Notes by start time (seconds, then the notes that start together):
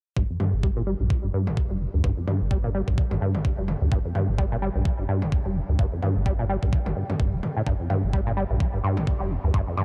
0.16 G1 G2, kick
0.30 F2
0.40 G2, mid tom
0.53 G1 A#3
0.63 G3, kick
0.77 A#2
0.87 G3
1.00 A#1 G2
1.10 G3, kick
1.24 G1 G2
1.34 G2
1.47 G1, mid tom
1.57 G2, kick
1.70 F1 G3
1.81 A#2
1.94 D2 G2
2.04 G1 G2, kick
2.17 F2
2.27 G2, mid tom
2.41 G1 A#3
2.51 G3, kick
2.64 A#2
2.74 G3
2.88 A#1 G2, kick
2.98 G3, kick
3.11 G1 G2, mid tom
3.21 G2
3.35 G1, mid tom
3.45 G2, kick
3.58 F1 G3
3.68 A#2, mid tom
3.81 D2 G2
3.91 G1 G2, kick
4.05 F2
4.15 G2, mid tom
4.28 G1 A#3
4.38 G3, kick
4.52 A#2
4.62 G3
4.75 A#1 G2
4.85 G3, kick
4.99 G1 G2
5.09 G2
5.22 G1, mid tom
5.32 G2, kick
5.45 F1 G3
5.56 A#2
5.69 D2 G2
5.79 G1 G2, kick
5.92 F2
6.03 G2, mid tom
6.16 G1 A#3
6.26 G3, kick
6.39 A#2
6.49 G3
6.63 A#1 G2, kick
6.73 G3, kick
6.86 G1 G2, mid tom
6.96 G2
7.10 G2, mid tom
7.20 F1 G2, kick
7.33 D1 G3
7.43 G2, mid tom
7.57 A2
7.67 G1 G2, kick
7.80 F2
7.90 G2, mid tom
8.03 G1 A#3
8.13 G3, kick
8.27 A#2
8.37 G3
8.50 A#1 G2
8.60 G3, kick
8.73 G1 G2
8.84 G2
8.97 G1, mid tom
9.07 G2, kick
9.20 F1 G3
9.30 A#2
9.44 D2 G2
9.54 G1 G2, kick
9.67 F2
9.77 G2, mid tom